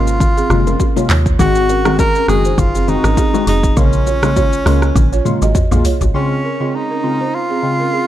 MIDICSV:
0, 0, Header, 1, 6, 480
1, 0, Start_track
1, 0, Key_signature, -5, "major"
1, 0, Tempo, 594059
1, 1126, Time_signature, 4, 2, 24, 8
1, 6521, End_track
2, 0, Start_track
2, 0, Title_t, "Balafon"
2, 0, Program_c, 0, 12
2, 301, Note_on_c, 0, 68, 92
2, 307, Note_on_c, 0, 60, 67
2, 381, Note_off_c, 0, 68, 0
2, 385, Note_off_c, 0, 60, 0
2, 542, Note_on_c, 0, 70, 85
2, 548, Note_on_c, 0, 61, 68
2, 621, Note_off_c, 0, 70, 0
2, 625, Note_off_c, 0, 61, 0
2, 782, Note_on_c, 0, 73, 87
2, 789, Note_on_c, 0, 65, 66
2, 861, Note_off_c, 0, 73, 0
2, 866, Note_off_c, 0, 65, 0
2, 889, Note_on_c, 0, 73, 88
2, 896, Note_on_c, 0, 65, 68
2, 987, Note_off_c, 0, 73, 0
2, 991, Note_off_c, 0, 65, 0
2, 1130, Note_on_c, 0, 68, 94
2, 1136, Note_on_c, 0, 60, 73
2, 1228, Note_off_c, 0, 68, 0
2, 1231, Note_off_c, 0, 60, 0
2, 1369, Note_on_c, 0, 70, 82
2, 1375, Note_on_c, 0, 61, 64
2, 1467, Note_off_c, 0, 70, 0
2, 1471, Note_off_c, 0, 61, 0
2, 1500, Note_on_c, 0, 68, 90
2, 1507, Note_on_c, 0, 60, 66
2, 1581, Note_off_c, 0, 68, 0
2, 1584, Note_off_c, 0, 60, 0
2, 1740, Note_on_c, 0, 70, 85
2, 1747, Note_on_c, 0, 61, 66
2, 1821, Note_off_c, 0, 70, 0
2, 1825, Note_off_c, 0, 61, 0
2, 1981, Note_on_c, 0, 72, 83
2, 1987, Note_on_c, 0, 63, 65
2, 2061, Note_off_c, 0, 72, 0
2, 2065, Note_off_c, 0, 63, 0
2, 2220, Note_on_c, 0, 68, 87
2, 2227, Note_on_c, 0, 60, 65
2, 2301, Note_off_c, 0, 68, 0
2, 2305, Note_off_c, 0, 60, 0
2, 2462, Note_on_c, 0, 70, 77
2, 2468, Note_on_c, 0, 61, 63
2, 2542, Note_off_c, 0, 70, 0
2, 2546, Note_off_c, 0, 61, 0
2, 2570, Note_on_c, 0, 68, 92
2, 2576, Note_on_c, 0, 60, 74
2, 2667, Note_off_c, 0, 68, 0
2, 2671, Note_off_c, 0, 60, 0
2, 2809, Note_on_c, 0, 68, 83
2, 2816, Note_on_c, 0, 60, 63
2, 2907, Note_off_c, 0, 68, 0
2, 2911, Note_off_c, 0, 60, 0
2, 3050, Note_on_c, 0, 70, 112
2, 3056, Note_on_c, 0, 61, 85
2, 3148, Note_off_c, 0, 70, 0
2, 3152, Note_off_c, 0, 61, 0
2, 3291, Note_on_c, 0, 73, 90
2, 3298, Note_on_c, 0, 65, 71
2, 3388, Note_off_c, 0, 73, 0
2, 3392, Note_off_c, 0, 65, 0
2, 3531, Note_on_c, 0, 73, 87
2, 3537, Note_on_c, 0, 65, 66
2, 3628, Note_off_c, 0, 73, 0
2, 3632, Note_off_c, 0, 65, 0
2, 3770, Note_on_c, 0, 70, 79
2, 3777, Note_on_c, 0, 61, 61
2, 3868, Note_off_c, 0, 70, 0
2, 3872, Note_off_c, 0, 61, 0
2, 4142, Note_on_c, 0, 73, 87
2, 4149, Note_on_c, 0, 65, 67
2, 4221, Note_off_c, 0, 73, 0
2, 4226, Note_off_c, 0, 65, 0
2, 4382, Note_on_c, 0, 75, 86
2, 4389, Note_on_c, 0, 66, 67
2, 4462, Note_off_c, 0, 75, 0
2, 4466, Note_off_c, 0, 66, 0
2, 4622, Note_on_c, 0, 77, 83
2, 4628, Note_on_c, 0, 68, 61
2, 4702, Note_off_c, 0, 77, 0
2, 4706, Note_off_c, 0, 68, 0
2, 4730, Note_on_c, 0, 73, 84
2, 4737, Note_on_c, 0, 65, 67
2, 4828, Note_off_c, 0, 73, 0
2, 4832, Note_off_c, 0, 65, 0
2, 4970, Note_on_c, 0, 68, 88
2, 4976, Note_on_c, 0, 60, 65
2, 5068, Note_off_c, 0, 68, 0
2, 5072, Note_off_c, 0, 60, 0
2, 5209, Note_on_c, 0, 70, 72
2, 5215, Note_on_c, 0, 61, 55
2, 5307, Note_off_c, 0, 70, 0
2, 5311, Note_off_c, 0, 61, 0
2, 5342, Note_on_c, 0, 68, 77
2, 5349, Note_on_c, 0, 60, 60
2, 5422, Note_off_c, 0, 68, 0
2, 5426, Note_off_c, 0, 60, 0
2, 5581, Note_on_c, 0, 70, 77
2, 5588, Note_on_c, 0, 61, 59
2, 5661, Note_off_c, 0, 70, 0
2, 5665, Note_off_c, 0, 61, 0
2, 5821, Note_on_c, 0, 72, 75
2, 5827, Note_on_c, 0, 63, 59
2, 5901, Note_off_c, 0, 72, 0
2, 5905, Note_off_c, 0, 63, 0
2, 6061, Note_on_c, 0, 68, 77
2, 6068, Note_on_c, 0, 60, 59
2, 6141, Note_off_c, 0, 68, 0
2, 6145, Note_off_c, 0, 60, 0
2, 6300, Note_on_c, 0, 70, 70
2, 6308, Note_on_c, 0, 61, 56
2, 6381, Note_off_c, 0, 70, 0
2, 6385, Note_off_c, 0, 61, 0
2, 6409, Note_on_c, 0, 68, 83
2, 6415, Note_on_c, 0, 60, 67
2, 6507, Note_off_c, 0, 68, 0
2, 6511, Note_off_c, 0, 60, 0
2, 6521, End_track
3, 0, Start_track
3, 0, Title_t, "Tenor saxophone"
3, 0, Program_c, 1, 66
3, 0, Note_on_c, 1, 65, 95
3, 889, Note_off_c, 1, 65, 0
3, 1134, Note_on_c, 1, 66, 114
3, 1578, Note_off_c, 1, 66, 0
3, 1613, Note_on_c, 1, 70, 118
3, 1833, Note_off_c, 1, 70, 0
3, 1852, Note_on_c, 1, 68, 107
3, 2093, Note_on_c, 1, 65, 99
3, 2105, Note_off_c, 1, 68, 0
3, 2332, Note_on_c, 1, 63, 107
3, 2344, Note_off_c, 1, 65, 0
3, 2807, Note_off_c, 1, 63, 0
3, 2812, Note_on_c, 1, 63, 95
3, 3051, Note_on_c, 1, 61, 101
3, 3063, Note_off_c, 1, 63, 0
3, 4488, Note_off_c, 1, 61, 0
3, 4971, Note_on_c, 1, 61, 82
3, 5453, Note_on_c, 1, 63, 92
3, 5466, Note_off_c, 1, 61, 0
3, 5933, Note_on_c, 1, 65, 101
3, 5945, Note_off_c, 1, 63, 0
3, 6521, Note_off_c, 1, 65, 0
3, 6521, End_track
4, 0, Start_track
4, 0, Title_t, "Synth keys"
4, 0, Program_c, 2, 88
4, 404, Note_on_c, 2, 48, 81
4, 406, Note_on_c, 2, 56, 73
4, 408, Note_on_c, 2, 58, 72
4, 410, Note_on_c, 2, 65, 86
4, 550, Note_off_c, 2, 48, 0
4, 551, Note_off_c, 2, 56, 0
4, 552, Note_off_c, 2, 58, 0
4, 553, Note_off_c, 2, 65, 0
4, 774, Note_on_c, 2, 48, 81
4, 776, Note_on_c, 2, 56, 74
4, 778, Note_on_c, 2, 58, 69
4, 780, Note_on_c, 2, 65, 84
4, 900, Note_off_c, 2, 48, 0
4, 900, Note_off_c, 2, 56, 0
4, 901, Note_off_c, 2, 58, 0
4, 902, Note_off_c, 2, 65, 0
4, 1123, Note_on_c, 2, 51, 97
4, 1124, Note_on_c, 2, 56, 91
4, 1126, Note_on_c, 2, 60, 89
4, 1127, Note_on_c, 2, 66, 111
4, 1269, Note_off_c, 2, 51, 0
4, 1270, Note_off_c, 2, 56, 0
4, 1271, Note_off_c, 2, 60, 0
4, 1271, Note_off_c, 2, 66, 0
4, 1496, Note_on_c, 2, 51, 80
4, 1498, Note_on_c, 2, 56, 78
4, 1499, Note_on_c, 2, 60, 77
4, 1501, Note_on_c, 2, 66, 91
4, 1620, Note_off_c, 2, 51, 0
4, 1621, Note_off_c, 2, 56, 0
4, 1622, Note_off_c, 2, 60, 0
4, 1623, Note_off_c, 2, 66, 0
4, 1843, Note_on_c, 2, 51, 79
4, 1845, Note_on_c, 2, 56, 76
4, 1846, Note_on_c, 2, 60, 72
4, 1848, Note_on_c, 2, 66, 85
4, 1989, Note_off_c, 2, 51, 0
4, 1990, Note_off_c, 2, 56, 0
4, 1991, Note_off_c, 2, 60, 0
4, 1992, Note_off_c, 2, 66, 0
4, 2323, Note_on_c, 2, 51, 80
4, 2325, Note_on_c, 2, 56, 74
4, 2326, Note_on_c, 2, 60, 73
4, 2328, Note_on_c, 2, 66, 84
4, 2469, Note_off_c, 2, 51, 0
4, 2470, Note_off_c, 2, 56, 0
4, 2471, Note_off_c, 2, 60, 0
4, 2472, Note_off_c, 2, 66, 0
4, 2693, Note_on_c, 2, 51, 75
4, 2694, Note_on_c, 2, 56, 75
4, 2697, Note_on_c, 2, 60, 73
4, 2698, Note_on_c, 2, 66, 83
4, 2819, Note_off_c, 2, 51, 0
4, 2820, Note_off_c, 2, 56, 0
4, 2821, Note_off_c, 2, 60, 0
4, 2821, Note_off_c, 2, 66, 0
4, 3041, Note_on_c, 2, 49, 99
4, 3043, Note_on_c, 2, 56, 90
4, 3044, Note_on_c, 2, 58, 91
4, 3046, Note_on_c, 2, 65, 104
4, 3188, Note_off_c, 2, 49, 0
4, 3189, Note_off_c, 2, 56, 0
4, 3190, Note_off_c, 2, 58, 0
4, 3190, Note_off_c, 2, 65, 0
4, 3413, Note_on_c, 2, 49, 78
4, 3415, Note_on_c, 2, 56, 75
4, 3416, Note_on_c, 2, 58, 73
4, 3418, Note_on_c, 2, 65, 88
4, 3539, Note_off_c, 2, 49, 0
4, 3540, Note_off_c, 2, 56, 0
4, 3541, Note_off_c, 2, 58, 0
4, 3541, Note_off_c, 2, 65, 0
4, 3762, Note_on_c, 2, 49, 77
4, 3763, Note_on_c, 2, 56, 71
4, 3765, Note_on_c, 2, 58, 73
4, 3767, Note_on_c, 2, 65, 87
4, 3909, Note_off_c, 2, 49, 0
4, 3909, Note_off_c, 2, 56, 0
4, 3910, Note_off_c, 2, 58, 0
4, 3911, Note_off_c, 2, 65, 0
4, 4241, Note_on_c, 2, 49, 82
4, 4243, Note_on_c, 2, 56, 70
4, 4245, Note_on_c, 2, 58, 72
4, 4245, Note_on_c, 2, 65, 87
4, 4388, Note_off_c, 2, 49, 0
4, 4389, Note_off_c, 2, 56, 0
4, 4390, Note_off_c, 2, 58, 0
4, 4390, Note_off_c, 2, 65, 0
4, 4614, Note_on_c, 2, 49, 77
4, 4616, Note_on_c, 2, 56, 72
4, 4617, Note_on_c, 2, 58, 70
4, 4619, Note_on_c, 2, 65, 85
4, 4739, Note_off_c, 2, 49, 0
4, 4740, Note_off_c, 2, 56, 0
4, 4741, Note_off_c, 2, 58, 0
4, 4742, Note_off_c, 2, 65, 0
4, 4962, Note_on_c, 2, 49, 86
4, 4963, Note_on_c, 2, 56, 78
4, 4964, Note_on_c, 2, 60, 81
4, 4966, Note_on_c, 2, 65, 98
4, 5109, Note_off_c, 2, 49, 0
4, 5109, Note_off_c, 2, 56, 0
4, 5110, Note_off_c, 2, 60, 0
4, 5111, Note_off_c, 2, 65, 0
4, 5335, Note_on_c, 2, 49, 74
4, 5336, Note_on_c, 2, 56, 67
4, 5337, Note_on_c, 2, 60, 69
4, 5339, Note_on_c, 2, 65, 81
4, 5460, Note_off_c, 2, 49, 0
4, 5461, Note_off_c, 2, 56, 0
4, 5461, Note_off_c, 2, 60, 0
4, 5462, Note_off_c, 2, 65, 0
4, 5683, Note_on_c, 2, 49, 70
4, 5684, Note_on_c, 2, 56, 64
4, 5685, Note_on_c, 2, 60, 65
4, 5687, Note_on_c, 2, 65, 75
4, 5829, Note_off_c, 2, 49, 0
4, 5830, Note_off_c, 2, 56, 0
4, 5830, Note_off_c, 2, 60, 0
4, 5831, Note_off_c, 2, 65, 0
4, 6162, Note_on_c, 2, 49, 73
4, 6164, Note_on_c, 2, 56, 69
4, 6165, Note_on_c, 2, 60, 67
4, 6167, Note_on_c, 2, 65, 77
4, 6309, Note_off_c, 2, 49, 0
4, 6309, Note_off_c, 2, 56, 0
4, 6310, Note_off_c, 2, 60, 0
4, 6311, Note_off_c, 2, 65, 0
4, 6521, End_track
5, 0, Start_track
5, 0, Title_t, "Log drum bass"
5, 0, Program_c, 3, 39
5, 0, Note_on_c, 3, 32, 95
5, 340, Note_off_c, 3, 32, 0
5, 404, Note_on_c, 3, 30, 104
5, 612, Note_off_c, 3, 30, 0
5, 885, Note_on_c, 3, 39, 90
5, 1093, Note_off_c, 3, 39, 0
5, 1125, Note_on_c, 3, 32, 101
5, 1813, Note_off_c, 3, 32, 0
5, 1845, Note_on_c, 3, 30, 85
5, 2052, Note_off_c, 3, 30, 0
5, 2084, Note_on_c, 3, 30, 98
5, 2406, Note_off_c, 3, 30, 0
5, 2457, Note_on_c, 3, 32, 98
5, 2550, Note_off_c, 3, 32, 0
5, 2805, Note_on_c, 3, 29, 101
5, 3012, Note_off_c, 3, 29, 0
5, 3045, Note_on_c, 3, 34, 106
5, 3733, Note_off_c, 3, 34, 0
5, 3766, Note_on_c, 3, 37, 95
5, 3973, Note_off_c, 3, 37, 0
5, 4004, Note_on_c, 3, 34, 106
5, 4212, Note_off_c, 3, 34, 0
5, 4379, Note_on_c, 3, 32, 93
5, 4472, Note_off_c, 3, 32, 0
5, 4617, Note_on_c, 3, 34, 101
5, 4711, Note_off_c, 3, 34, 0
5, 4858, Note_on_c, 3, 32, 96
5, 4951, Note_off_c, 3, 32, 0
5, 6521, End_track
6, 0, Start_track
6, 0, Title_t, "Drums"
6, 59, Note_on_c, 9, 82, 52
6, 140, Note_off_c, 9, 82, 0
6, 165, Note_on_c, 9, 36, 109
6, 167, Note_on_c, 9, 61, 60
6, 167, Note_on_c, 9, 64, 81
6, 169, Note_on_c, 9, 82, 70
6, 245, Note_off_c, 9, 36, 0
6, 248, Note_off_c, 9, 61, 0
6, 248, Note_off_c, 9, 64, 0
6, 249, Note_off_c, 9, 82, 0
6, 304, Note_on_c, 9, 82, 58
6, 385, Note_off_c, 9, 82, 0
6, 406, Note_on_c, 9, 37, 85
6, 409, Note_on_c, 9, 64, 77
6, 409, Note_on_c, 9, 82, 49
6, 486, Note_off_c, 9, 37, 0
6, 490, Note_off_c, 9, 64, 0
6, 490, Note_off_c, 9, 82, 0
6, 542, Note_on_c, 9, 61, 77
6, 542, Note_on_c, 9, 82, 58
6, 623, Note_off_c, 9, 61, 0
6, 623, Note_off_c, 9, 82, 0
6, 644, Note_on_c, 9, 36, 96
6, 646, Note_on_c, 9, 60, 78
6, 646, Note_on_c, 9, 82, 80
6, 725, Note_off_c, 9, 36, 0
6, 727, Note_off_c, 9, 60, 0
6, 727, Note_off_c, 9, 82, 0
6, 780, Note_on_c, 9, 61, 79
6, 784, Note_on_c, 9, 82, 56
6, 861, Note_off_c, 9, 61, 0
6, 865, Note_off_c, 9, 82, 0
6, 887, Note_on_c, 9, 46, 74
6, 888, Note_on_c, 9, 39, 105
6, 967, Note_off_c, 9, 46, 0
6, 968, Note_off_c, 9, 39, 0
6, 1017, Note_on_c, 9, 36, 91
6, 1019, Note_on_c, 9, 82, 57
6, 1098, Note_off_c, 9, 36, 0
6, 1100, Note_off_c, 9, 82, 0
6, 1126, Note_on_c, 9, 36, 117
6, 1126, Note_on_c, 9, 64, 82
6, 1127, Note_on_c, 9, 82, 82
6, 1207, Note_off_c, 9, 36, 0
6, 1207, Note_off_c, 9, 64, 0
6, 1208, Note_off_c, 9, 82, 0
6, 1254, Note_on_c, 9, 82, 50
6, 1335, Note_off_c, 9, 82, 0
6, 1368, Note_on_c, 9, 82, 56
6, 1369, Note_on_c, 9, 60, 59
6, 1449, Note_off_c, 9, 82, 0
6, 1450, Note_off_c, 9, 60, 0
6, 1498, Note_on_c, 9, 37, 118
6, 1498, Note_on_c, 9, 82, 54
6, 1504, Note_on_c, 9, 61, 79
6, 1579, Note_off_c, 9, 37, 0
6, 1579, Note_off_c, 9, 82, 0
6, 1585, Note_off_c, 9, 61, 0
6, 1607, Note_on_c, 9, 36, 104
6, 1607, Note_on_c, 9, 82, 74
6, 1609, Note_on_c, 9, 60, 79
6, 1688, Note_off_c, 9, 36, 0
6, 1688, Note_off_c, 9, 82, 0
6, 1690, Note_off_c, 9, 60, 0
6, 1740, Note_on_c, 9, 82, 52
6, 1820, Note_off_c, 9, 82, 0
6, 1846, Note_on_c, 9, 37, 91
6, 1853, Note_on_c, 9, 82, 58
6, 1927, Note_off_c, 9, 37, 0
6, 1933, Note_off_c, 9, 82, 0
6, 1978, Note_on_c, 9, 82, 48
6, 2059, Note_off_c, 9, 82, 0
6, 2084, Note_on_c, 9, 36, 115
6, 2087, Note_on_c, 9, 61, 61
6, 2087, Note_on_c, 9, 64, 80
6, 2089, Note_on_c, 9, 82, 70
6, 2165, Note_off_c, 9, 36, 0
6, 2168, Note_off_c, 9, 61, 0
6, 2168, Note_off_c, 9, 64, 0
6, 2169, Note_off_c, 9, 82, 0
6, 2222, Note_on_c, 9, 82, 60
6, 2303, Note_off_c, 9, 82, 0
6, 2328, Note_on_c, 9, 82, 50
6, 2329, Note_on_c, 9, 64, 78
6, 2409, Note_off_c, 9, 82, 0
6, 2410, Note_off_c, 9, 64, 0
6, 2457, Note_on_c, 9, 37, 98
6, 2460, Note_on_c, 9, 82, 59
6, 2462, Note_on_c, 9, 61, 73
6, 2538, Note_off_c, 9, 37, 0
6, 2541, Note_off_c, 9, 82, 0
6, 2543, Note_off_c, 9, 61, 0
6, 2563, Note_on_c, 9, 36, 98
6, 2565, Note_on_c, 9, 82, 80
6, 2567, Note_on_c, 9, 60, 78
6, 2644, Note_off_c, 9, 36, 0
6, 2646, Note_off_c, 9, 82, 0
6, 2648, Note_off_c, 9, 60, 0
6, 2701, Note_on_c, 9, 61, 81
6, 2703, Note_on_c, 9, 82, 55
6, 2782, Note_off_c, 9, 61, 0
6, 2784, Note_off_c, 9, 82, 0
6, 2806, Note_on_c, 9, 46, 77
6, 2887, Note_off_c, 9, 46, 0
6, 2937, Note_on_c, 9, 36, 97
6, 2939, Note_on_c, 9, 82, 57
6, 3017, Note_off_c, 9, 36, 0
6, 3020, Note_off_c, 9, 82, 0
6, 3045, Note_on_c, 9, 36, 116
6, 3046, Note_on_c, 9, 82, 78
6, 3047, Note_on_c, 9, 64, 80
6, 3126, Note_off_c, 9, 36, 0
6, 3126, Note_off_c, 9, 82, 0
6, 3128, Note_off_c, 9, 64, 0
6, 3174, Note_on_c, 9, 82, 51
6, 3255, Note_off_c, 9, 82, 0
6, 3287, Note_on_c, 9, 82, 54
6, 3288, Note_on_c, 9, 60, 55
6, 3368, Note_off_c, 9, 82, 0
6, 3369, Note_off_c, 9, 60, 0
6, 3417, Note_on_c, 9, 37, 126
6, 3417, Note_on_c, 9, 82, 51
6, 3424, Note_on_c, 9, 61, 84
6, 3498, Note_off_c, 9, 37, 0
6, 3498, Note_off_c, 9, 82, 0
6, 3504, Note_off_c, 9, 61, 0
6, 3527, Note_on_c, 9, 36, 97
6, 3527, Note_on_c, 9, 82, 75
6, 3529, Note_on_c, 9, 60, 80
6, 3607, Note_off_c, 9, 82, 0
6, 3608, Note_off_c, 9, 36, 0
6, 3610, Note_off_c, 9, 60, 0
6, 3659, Note_on_c, 9, 82, 51
6, 3740, Note_off_c, 9, 82, 0
6, 3765, Note_on_c, 9, 37, 91
6, 3772, Note_on_c, 9, 46, 84
6, 3846, Note_off_c, 9, 37, 0
6, 3853, Note_off_c, 9, 46, 0
6, 3897, Note_on_c, 9, 37, 86
6, 3898, Note_on_c, 9, 82, 51
6, 3978, Note_off_c, 9, 37, 0
6, 3979, Note_off_c, 9, 82, 0
6, 4004, Note_on_c, 9, 36, 112
6, 4006, Note_on_c, 9, 48, 67
6, 4008, Note_on_c, 9, 61, 63
6, 4008, Note_on_c, 9, 64, 84
6, 4009, Note_on_c, 9, 82, 73
6, 4085, Note_off_c, 9, 36, 0
6, 4087, Note_off_c, 9, 48, 0
6, 4089, Note_off_c, 9, 61, 0
6, 4089, Note_off_c, 9, 64, 0
6, 4090, Note_off_c, 9, 82, 0
6, 4143, Note_on_c, 9, 82, 60
6, 4224, Note_off_c, 9, 82, 0
6, 4245, Note_on_c, 9, 47, 78
6, 4249, Note_on_c, 9, 82, 49
6, 4250, Note_on_c, 9, 64, 74
6, 4326, Note_off_c, 9, 47, 0
6, 4330, Note_off_c, 9, 64, 0
6, 4330, Note_off_c, 9, 82, 0
6, 4380, Note_on_c, 9, 82, 59
6, 4384, Note_on_c, 9, 61, 75
6, 4461, Note_off_c, 9, 82, 0
6, 4464, Note_off_c, 9, 61, 0
6, 4483, Note_on_c, 9, 36, 98
6, 4485, Note_on_c, 9, 45, 94
6, 4485, Note_on_c, 9, 82, 76
6, 4487, Note_on_c, 9, 60, 81
6, 4564, Note_off_c, 9, 36, 0
6, 4566, Note_off_c, 9, 45, 0
6, 4566, Note_off_c, 9, 82, 0
6, 4568, Note_off_c, 9, 60, 0
6, 4617, Note_on_c, 9, 45, 91
6, 4622, Note_on_c, 9, 61, 77
6, 4622, Note_on_c, 9, 82, 55
6, 4698, Note_off_c, 9, 45, 0
6, 4703, Note_off_c, 9, 61, 0
6, 4703, Note_off_c, 9, 82, 0
6, 4725, Note_on_c, 9, 43, 110
6, 4726, Note_on_c, 9, 46, 79
6, 4726, Note_on_c, 9, 82, 53
6, 4806, Note_off_c, 9, 43, 0
6, 4806, Note_off_c, 9, 46, 0
6, 4806, Note_off_c, 9, 82, 0
6, 4856, Note_on_c, 9, 43, 97
6, 4858, Note_on_c, 9, 82, 54
6, 4865, Note_on_c, 9, 60, 62
6, 4937, Note_off_c, 9, 43, 0
6, 4938, Note_off_c, 9, 82, 0
6, 4946, Note_off_c, 9, 60, 0
6, 6521, End_track
0, 0, End_of_file